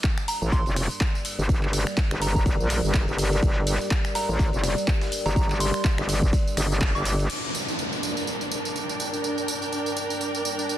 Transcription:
0.00 7.26 G3 medium
0.00 7.26 G4 medium
0.00 7.26 A#4 medium
0.00 7.26 D5 medium
0.00 kick loud
0.00 snare loud
0.00 ride medium
0.04 clap loud
0.18 finger snap medium
0.18 tambourine soft
0.28 0.37 A#5 medium
0.28 open hi-hat medium
0.28 ride medium
0.28 tambourine medium
0.42 0.64 A1 medium
0.42 0.48 A#5 medium
0.42 tambourine soft
0.52 0.74 C6 medium
0.52 kick loud
0.52 ride medium
0.52 tambourine soft
0.66 0.88 F1 loud
0.66 ride soft
0.66 tambourine soft
0.76 finger snap medium
0.76 open hi-hat loud
0.76 ride medium
0.76 tambourine medium
0.91 tambourine soft
1.01 kick loud
1.01 snare loud
1.01 clap loud
1.01 ride medium
1.01 tambourine soft
1.15 tambourine soft
1.25 open hi-hat medium
1.25 ride medium
1.25 tambourine medium
1.39 1.85 G1 loud
1.39 tambourine soft
1.49 kick loud
1.49 ride medium
1.49 tambourine soft
1.63 clap soft
1.73 open hi-hat loud
1.73 ride medium
1.73 tambourine medium
1.87 finger snap medium
1.87 snare soft
1.87 tambourine soft
1.97 kick loud
1.97 snare loud
1.97 clap loud
1.97 ride medium
1.97 tambourine soft
2.11 2.44 G1 loud
2.11 finger snap medium
2.11 snare soft
2.11 tambourine soft
2.22 2.30 A#5 medium
2.22 open hi-hat medium
2.22 ride medium
2.22 tambourine medium
2.35 2.42 A#5 medium
2.35 kick medium
2.35 tambourine soft
2.46 2.57 G1 loud
2.46 kick loud
2.46 ride medium
2.46 tambourine soft
2.60 2.82 A#1 loud
2.60 tambourine soft
2.70 finger snap medium
2.70 open hi-hat loud
2.70 ride medium
2.70 tambourine medium
2.84 3.06 G1 loud
2.84 tambourine soft
2.94 kick loud
2.94 snare loud
2.94 clap loud
2.94 ride medium
2.94 tambourine soft
3.08 3.41 G1 loud
3.08 ride soft
3.08 tambourine soft
3.18 open hi-hat medium
3.18 ride medium
3.18 tambourine medium
3.32 ride soft
3.32 tambourine soft
3.43 3.78 G1 medium
3.43 kick loud
3.43 ride medium
3.43 tambourine soft
3.67 open hi-hat loud
3.67 ride medium
3.67 tambourine medium
3.81 snare soft
3.81 tambourine soft
3.91 kick loud
3.91 snare loud
3.91 clap loud
3.91 ride medium
3.91 tambourine soft
4.05 finger snap medium
4.05 tambourine soft
4.15 4.24 A#5 medium
4.15 snare loud
4.15 open hi-hat medium
4.15 ride medium
4.15 tambourine medium
4.29 4.51 A1 medium
4.29 4.36 A#5 medium
4.29 tambourine soft
4.39 kick loud
4.39 snare loud
4.39 ride medium
4.39 tambourine soft
4.53 4.75 F1 medium
4.53 ride soft
4.53 tambourine soft
4.64 finger snap medium
4.64 snare loud
4.64 open hi-hat loud
4.64 ride medium
4.64 tambourine medium
4.78 tambourine soft
4.88 kick loud
4.88 clap loud
4.88 ride medium
4.88 tambourine soft
5.01 snare loud
5.01 ride medium
5.01 tambourine soft
5.12 open hi-hat medium
5.12 tambourine medium
5.26 5.72 G1 loud
5.26 5.32 A#5 medium
5.26 ride medium
5.26 tambourine soft
5.36 5.45 A#5 medium
5.36 kick loud
5.36 ride medium
5.36 tambourine soft
5.50 clap soft
5.50 tambourine soft
5.60 5.69 C6 medium
5.60 open hi-hat loud
5.60 ride medium
5.60 tambourine medium
5.74 5.81 C6 medium
5.74 finger snap medium
5.74 snare soft
5.74 tambourine soft
5.84 kick loud
5.84 snare loud
5.84 clap loud
5.84 ride medium
5.84 tambourine soft
5.98 6.31 G1 loud
5.98 finger snap medium
5.98 snare soft
5.98 tambourine soft
6.09 open hi-hat medium
6.09 ride medium
6.09 tambourine medium
6.22 kick medium
6.22 tambourine soft
6.33 kick loud
6.33 ride medium
6.33 tambourine soft
6.47 tambourine soft
6.57 6.93 G1 loud
6.57 finger snap medium
6.57 open hi-hat loud
6.57 ride medium
6.57 tambourine medium
6.72 tambourine soft
6.81 kick loud
6.81 snare loud
6.81 clap loud
6.81 ride medium
6.81 tambourine soft
6.95 7.28 G1 loud
6.95 7.30 D6 medium
6.95 ride soft
6.95 tambourine soft
7.05 open hi-hat medium
7.05 ride medium
7.05 tambourine medium
7.19 ride soft
7.19 tambourine soft
7.30 10.78 G3 medium
7.30 10.78 D4 medium
7.30 10.78 G4 medium
7.30 10.78 A#4 medium
7.30 10.78 D5 medium
7.30 crash medium
7.30 tambourine soft
7.30 downlifter medium
7.55 tambourine medium
7.68 tambourine soft
7.79 tambourine soft
7.93 tambourine soft
8.03 tambourine medium
8.09 10.78 A#4 medium
8.17 tambourine soft
8.27 tambourine soft
8.41 tambourine soft
8.52 tambourine medium
8.65 tambourine soft
8.76 10.78 G5 medium
8.76 tambourine soft
8.89 tambourine soft
9.00 tambourine medium
9.14 tambourine soft
9.24 tambourine soft
9.38 tambourine soft
9.48 tambourine medium
9.62 tambourine soft
9.72 tambourine soft
9.86 tambourine soft
9.97 tambourine medium
10.10 tambourine soft
10.21 tambourine soft
10.35 tambourine soft
10.45 tambourine medium
10.59 tambourine soft
10.69 tambourine soft

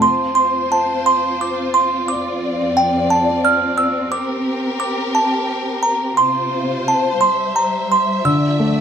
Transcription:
0.02 7.17 C4 medium
0.02 4.09 F4 medium
0.02 2.07 C5 medium
0.02 0.34 C6 medium
0.35 0.68 C6 medium
0.72 1.04 A5 medium
1.06 1.22 C6 medium
1.41 1.56 D6 medium
1.74 2.06 C6 medium
2.08 4.10 F2 medium
2.08 4.11 D5 medium
2.08 2.79 D6 medium
2.77 2.92 G5 medium
3.10 3.42 A5 medium
3.45 3.76 F6 medium
3.78 4.10 E6 medium
4.12 6.15 G4 medium
4.12 6.15 A#4 medium
4.12 4.79 D6 medium
4.80 5.15 D6 medium
5.15 5.84 A5 medium
5.83 6.18 A#5 medium
6.17 7.19 C3 medium
6.17 7.20 F4 medium
6.17 8.23 C5 medium
6.17 6.82 C6 medium
6.88 7.19 A5 medium
7.21 8.24 G3 medium
7.21 8.81 E5 medium
7.21 7.36 C6 medium
7.56 7.88 A#5 medium
7.92 8.26 C6 medium
8.24 8.81 D3 medium
8.24 8.81 F3 medium
8.24 8.81 D5 medium
8.24 8.57 E6 medium
8.59 8.81 A3 soft

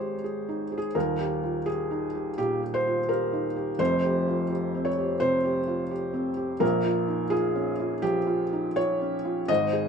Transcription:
0.00 0.97 G#1 soft
0.00 0.97 G#2 soft
0.00 0.98 G#3 soft
0.00 0.49 D#4 soft
0.00 0.97 G4 soft
0.00 0.24 G#4 soft
0.00 0.97 C5 medium
0.00 0.97 C#5 medium
0.24 0.62 G#4 soft
0.49 0.86 D#4 soft
0.72 0.76 G#4 soft
0.78 0.95 G#4 medium
0.95 2.34 D#1 medium
0.95 2.34 D#2 medium
0.95 1.66 A#4 medium
1.20 1.57 G4 soft
1.43 1.67 F4 soft
1.66 2.04 G4 soft
1.66 2.37 G#4 medium
1.91 2.29 D#4 soft
2.15 2.36 G4 soft
2.38 2.77 A#2 soft
2.38 2.61 G4 medium
2.63 3.00 G4 soft
2.74 3.09 C5 medium
2.87 3.10 F4 soft
3.09 3.47 G4 soft
3.09 3.79 A#4 medium
3.33 3.70 D#4 soft
3.56 3.80 G4 soft
3.79 5.17 F1 medium
3.79 5.17 F2 medium
3.79 4.86 C5 loud
4.05 4.42 G4 soft
4.28 4.51 F4 soft
4.50 4.88 G4 soft
4.75 5.12 C4 soft
4.85 5.20 C#5 medium
4.98 5.35 G4 soft
5.20 5.59 C3 medium
5.20 6.62 C5 loud
5.45 5.82 G4 soft
5.67 5.91 F4 soft
5.91 6.29 G4 soft
6.14 6.52 C4 medium
6.37 6.61 G4 medium
6.60 7.98 A#1 medium
6.60 7.99 A#2 medium
6.60 7.31 A#4 medium
6.85 7.22 F4 medium
7.08 7.32 D#4 soft
7.30 7.69 F4 soft
7.30 8.02 G#4 medium
7.55 7.94 C#4 medium
7.79 8.18 F4 medium
8.02 8.43 F3 medium
8.02 8.77 G4 medium
8.27 8.67 F4 medium
8.53 8.78 D#4 soft
8.76 9.15 F4 medium
8.76 9.48 C#5 loud
9.01 9.39 C#4 medium
9.25 9.49 F4 medium
9.48 9.88 G#1 medium
9.48 9.88 G#2 medium
9.48 9.88 D#5 loud
9.73 9.88 G#4 medium

